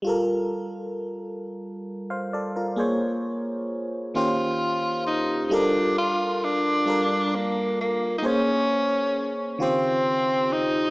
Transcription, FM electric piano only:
\new Staff \with { instrumentName = "FM electric piano" } { \time 6/8 \key g \minor \tempo 4. = 44 << { r2 r16 <c'' f''>16 <a' d''>16 <f' bes'>16~ | <f' bes'>16 r2 r8. | r2. | r2. | } \\ { <g f' a' bes'>2. | <bes aes' c'' des''>4. <ees bes des' f' g' c''>4. | <g f' a' bes'>4 r8 <g f' a' bes'>4 r8 | <bes aes' c'' des''>4 r8 <des ees f' g' c''>4 r8 | } >> }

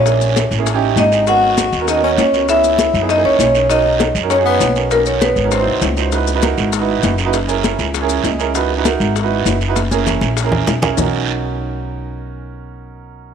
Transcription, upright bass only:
\new Staff \with { instrumentName = "Upright bass" } { \clef bass \time 4/4 \key b \major \tempo 4 = 198 ais,,4. a,,4. gis,,4~ | gis,,4. dis,4. cis,4~ | cis,4. fis,4 cis,8 b,,4~ | b,,4. fis,4. b,,4~ |
b,,4. gis,,4 bis,,8 cis,4~ | cis,4. gis,,4. fis,,4~ | fis,,4. cis,4. cis,4~ | cis,4. gis,,4. fis,,4~ |
fis,,4. ais,,4. b,,4 | b,,1~ | b,,1 | }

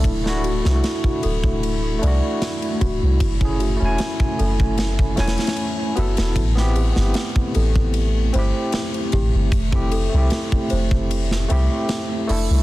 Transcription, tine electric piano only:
\new Staff \with { instrumentName = "Tine electric piano" } { \time 4/4 \key a \minor \tempo 4 = 76 <a d' e' a'>16 <a d' e' fis'>8 <a d' e' fis'>4.~ <a d' e' fis'>16 <a d' e' fis'>4. | r16 <a cis' e' gis'>8 <a cis' e' gis''>4.~ <a cis' e' gis''>16 <a cis' e' gis''>4 <b e' a'>8~ | <b e' a'>16 <b c' e' g'>8 <b c' e' g'>4.~ <b c' e' g'>16 <c' e' g'>4. | r16 <a c' e' g'>8 <a c' e' g'>4.~ <a c' e' g'>16 <a c' e' g'>4 <a d' e' a'>8 | }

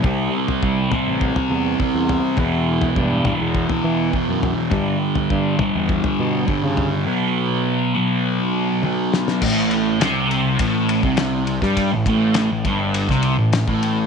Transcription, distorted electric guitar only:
\new Staff \with { instrumentName = "Distorted electric guitar" } { \clef bass \time 4/4 \key g \lydian \tempo 4 = 102 <c g c'>4. <c g c'>4. <c g c'>4 | <e, b, e>4. <e, b, e>4. <e, b, e>4 | <g, d g>4. <g, d g>4. <g, d g>4 | <b, fis b>4. <b, fis b>4. <b, fis b>4 |
a,4 c4 a,8. c4 g16~ | g16 a,16 a,8. a,16 g,8. c8 a,8 a,8. | }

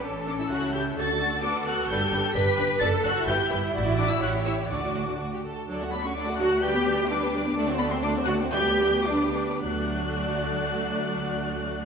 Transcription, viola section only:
\new Staff \with { instrumentName = "Viola section" } { \time 2/4 \key d \major \tempo 4 = 126 r8 d'16 e'16 fis'8 g'8 | a'4 d'8 fis'8 | g'4 b'4 | a'8 fis'8 g'8 r8 |
r8 d'16 e'16 fis'8 e'8 | d'4 r4 | <fis d'>16 <a fis'>16 <fis d'>16 <a fis'>16 <fis d'>16 <a fis'>16 <fis d'>16 <a fis'>16 | <g d'>16 b16 <g d'>16 b16 <g d'>16 b16 <g d'>16 b16 |
<a d'>16 c'16 <a d'>16 c'16 <a d'>16 c'16 <a d'>16 c'16 | <g d'>16 b16 <g d'>16 b16 <g d'>16 b16 <g d'>16 b16 | <a d'>2~ | <a d'>2 | }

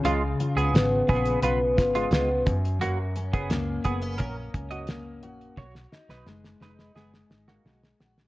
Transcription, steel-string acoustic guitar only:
\new Staff \with { instrumentName = "Steel-string acoustic guitar" } { \time 4/4 \key fis \major \tempo 4 = 87 cis8 eis'8 b8 eis'8 b8 eis'8 b8 fis,8 | fis,8 cis'8 ais8 b16 cis'16 ais8 cis'8 ais8 fis'8 | r8 dis'8 gis8 dis'8 gis8 dis'8 gis8 fis'8 | }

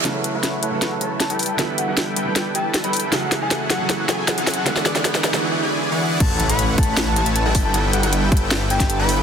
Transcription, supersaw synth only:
\new Staff \with { instrumentName = "Supersaw synth" } { \time 4/4 \key a \major \tempo 4 = 156 <a e' b' cis'' fis''>8. <a e' b' cis'' fis''>8. <a e' b' cis'' fis''>8 <a e' b' cis'' fis''>8 <a e' b' cis'' a''>8. <g e' a' b' g''>8. | <g e' a' b' g''>8. <g e' a' b' g''>8. <g e' a' b' g''>8 <g e' a' b' g''>8 <g e' a' b' a''>8. <g e' a' b' g''>8. | <fis e' gis' a' fis''>8. <fis e' gis' a' fis''>8. <fis e' gis' a' fis''>8 <fis e' gis' a' fis''>8 <fis e' gis' a' gis''>8. <fis e' gis' a' fis''>8. | <e e' gis' d'' fis''>8. <e e' gis' d'' fis''>8. <e e' gis' d'' fis''>8 <e e' gis' d'' fis''>8 <e e' gis' d'' gis''>8. <e e' gis' d'' fis''>8. |
r8. <a e' b' cis'' fis''>8. <a e' b' cis'' fis''>8 <a e' b' cis'' fis''>8 <a e' b' cis'' a''>8. <g e' a' b' g''>8. | <g e' a' b' g''>8. <g e' a' b' g''>8. r8 <g e' a' b' g''>8 <g e' a' b' a''>8. <g e' a' b' g''>8. | }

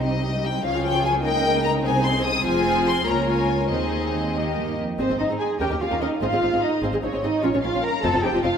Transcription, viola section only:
\new Staff \with { instrumentName = "Viola section" } { \time 6/8 \key aes \major \tempo 4. = 99 << { c'4. f'4. | ees'2. | f'4. f'4. | ees'4. ees'4 r8 |
aes'16 aes'16 ees'16 aes'16 r8 bes'16 bes'16 g'16 bes'16 bes'16 r16 | aes'16 aes'16 ees'16 aes'16 r8 aes'16 aes'16 ees'16 aes'16 aes'16 r16 | f'16 f'16 des'16 f'16 r8 f'16 f'16 ees'16 f'16 f'16 r16 | } \\ { g4. f4. | bes4. c'4. | c'4. bes4. | c'4. bes4 r8 |
c'16 c'16 c'16 c'16 r8 des'16 des'16 des'16 des'16 des'16 r16 | c'16 c'16 c'16 c'16 r8 c'16 c'16 c'16 c'16 c'16 r16 | des'16 des'16 des'16 des'16 r8 c'16 c'16 c'16 c'16 c'16 r16 | } >> }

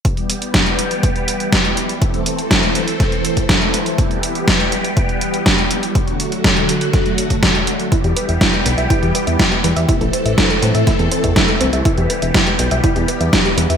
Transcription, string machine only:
\new Staff \with { instrumentName = "String machine" } { \time 4/4 \key e \minor \tempo 4 = 122 << { <g b g'>1 | <a c' a'>1 | <g b g'>1 | <fis a fis'>1 |
<g b g'>1 | <a c' a'>1 | <g b g'>1 | } \\ { e1~ | e1~ | e1 | d1 |
e1~ | e1~ | e1 | } >> }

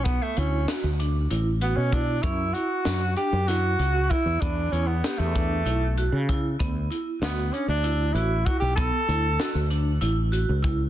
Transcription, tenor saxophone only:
\new Staff \with { instrumentName = "Tenor saxophone" } { \time 7/8 \key d \major \tempo 4 = 96 b16 a16 cis'8 r4. b16 cis'16 d'8 | e'8 fis'4 g'8 fis'4 e'8 | d'8 cis'16 b8 a4. r8. | r4 b8 cis'16 d'8. e'8 fis'16 g'16 |
a'4. r2 | }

